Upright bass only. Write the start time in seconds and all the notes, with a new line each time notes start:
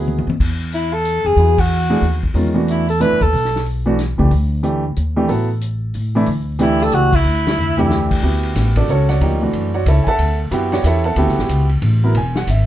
Already playing: D2
0.27 F2
0.40 E2
1.25 F2
1.36 E2
2.02 D#2
2.34 E2
3.10 F#2
3.22 D#2
3.33 B1
4.19 C#2
4.31 D2
4.97 D#2
5.29 A1
5.95 A2
6.27 D2
6.91 C#2
7.25 D2
8.23 D2
8.55 A1
8.88 C#2
9.21 D2
9.53 F#2
9.86 C#2
10.06 muted upright bass stroke
10.18 D2
10.51 F#2
10.84 E2
11.16 D2
11.27 C#2
11.38 A1
11.49 C#2
11.82 A1
12.15 E1
12.47 G#1